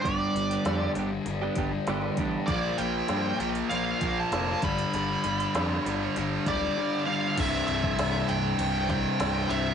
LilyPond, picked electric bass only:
\new Staff \with { instrumentName = "Picked electric bass" } { \clef bass \time 4/4 \key c \mixolydian \tempo 4 = 98 g,,8 g,,8 f,8 g,,8 g,,8 g,,8 g,,8 a,,8 | bes,,8 bes,,8 g,8 bes,,8 bes,,8 bes,,8 f,,8 g,,8 | g,,8 g,,8 f,8 g,,8 g,,8 d,,8 r4 | c,,8 c,,8 c,,8 c,,8 c,,4 c,,8 c,,8 | }